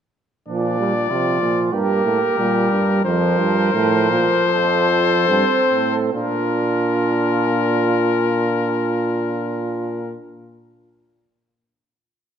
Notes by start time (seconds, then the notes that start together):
0.48 A#2 F3 D4 D5
0.79 G3
1.11 C3 F3 F4
1.42 A#2
1.73 G2 A#3 G4 A#4
2.05 A2
2.38 A#2 G3
2.71 G2
3.04 F2 F3 A#4 C5
3.39 G2
3.73 A2 F3
4.10 A#2
4.48 F2 A4
5.28 G2 C4
5.70 A2
6.13 A#2 D4 F4 A#4